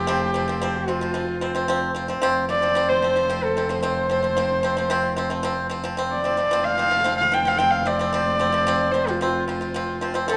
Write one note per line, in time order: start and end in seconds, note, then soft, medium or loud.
0.00 2.22 F1 medium
0.00 0.77 G4 medium
0.07 0.29 F3 loud
0.07 0.30 C4 loud
0.34 0.45 F3 medium
0.34 0.46 C4 medium
0.48 0.59 F3 medium
0.48 0.60 C4 medium
0.62 0.83 F3 medium
0.62 0.84 C4 medium
0.76 1.83 F4 medium
0.88 0.99 F3 medium
0.88 0.99 C4 medium
1.01 1.12 F3 medium
1.01 1.13 C4 medium
1.14 1.36 F3 medium
1.14 1.37 C4 medium
1.41 1.53 F3 medium
1.41 1.53 C4 medium
1.55 1.66 F3 medium
1.55 1.66 C4 medium
1.68 1.90 F3 medium
1.68 1.91 C4 loud
1.95 2.06 F3 medium
1.95 2.07 C4 medium
2.08 2.20 F3 medium
2.08 2.20 C4 medium
2.22 6.52 F1 medium
2.22 2.44 F3 loud
2.22 2.44 C4 loud
2.49 2.60 F3 medium
2.49 2.60 C4 medium
2.49 2.90 D5 loud
2.62 2.73 F3 medium
2.62 2.74 C4 medium
2.75 2.97 F3 medium
2.75 2.98 C4 medium
2.89 3.45 C5 medium
3.02 3.14 F3 medium
3.02 3.14 C4 medium
3.16 3.27 F3 medium
3.16 3.28 C4 medium
3.30 3.51 F3 medium
3.30 3.52 C4 medium
3.44 3.71 A4 medium
3.57 3.68 F3 medium
3.57 3.68 C4 medium
3.69 3.81 F3 medium
3.69 3.81 C4 medium
3.69 3.82 C5 medium
3.83 4.05 F3 medium
3.83 4.05 C4 loud
3.83 5.51 C5 medium
4.09 4.21 F3 medium
4.09 4.21 C4 medium
4.23 4.34 F3 medium
4.23 4.35 C4 medium
4.37 4.59 F3 medium
4.37 4.59 C4 loud
4.63 4.74 F3 medium
4.63 4.75 C4 medium
4.77 4.88 F3 medium
4.77 4.89 C4 medium
4.90 5.12 F3 loud
4.90 5.13 C4 loud
5.17 5.28 F3 medium
5.17 5.29 C4 medium
5.30 5.41 F3 medium
5.30 5.42 C4 medium
5.43 5.65 F3 loud
5.43 5.66 C4 loud
5.70 5.81 F3 medium
5.70 5.82 C4 medium
5.84 5.95 F3 medium
5.84 5.96 C4 medium
5.97 6.19 F3 medium
5.97 6.20 C4 medium
6.12 6.65 D5 medium
6.24 6.35 F3 medium
6.24 6.36 C4 medium
6.37 6.49 F3 medium
6.37 6.49 C4 medium
6.51 10.37 F1 medium
6.51 6.73 F3 medium
6.51 6.74 C4 loud
6.63 7.17 F5 loud
6.78 6.89 F3 medium
6.78 6.90 C4 medium
6.91 7.03 F3 medium
6.91 7.03 C4 medium
7.04 7.27 F3 medium
7.04 7.27 C4 loud
7.18 7.35 F5 medium
7.32 7.43 F3 medium
7.32 7.44 C4 medium
7.32 7.49 G5 medium
7.45 7.56 F3 medium
7.45 7.57 C4 medium
7.45 7.59 F5 medium
7.58 7.81 F3 medium
7.58 7.81 C4 medium
7.58 7.72 G5 medium
7.71 7.88 F5 medium
7.85 7.97 F3 medium
7.85 7.97 C4 medium
7.85 8.93 D5 loud
7.99 8.10 F3 medium
7.99 8.11 C4 medium
8.13 8.35 F3 medium
8.13 8.35 C4 medium
8.39 8.51 F3 medium
8.39 8.51 C4 medium
8.52 8.64 F3 medium
8.52 8.65 C4 medium
8.67 8.88 F3 loud
8.67 8.89 C4 loud
8.92 9.05 F3 medium
8.92 9.05 C4 medium
8.92 9.11 C5 medium
9.07 9.18 F3 medium
9.07 9.19 C4 medium
9.07 10.17 F4 medium
9.21 9.42 F3 medium
9.21 9.43 C4 medium
9.48 9.58 F3 medium
9.48 9.59 C4 medium
9.61 9.72 F3 medium
9.61 9.72 C4 medium
9.74 9.96 F3 medium
9.74 9.97 C4 loud
10.01 10.12 F3 medium
10.01 10.13 C4 medium
10.14 10.25 F3 medium
10.14 10.26 C4 medium
10.28 10.37 F3 loud
10.28 10.37 C4 loud
10.28 10.37 A4 medium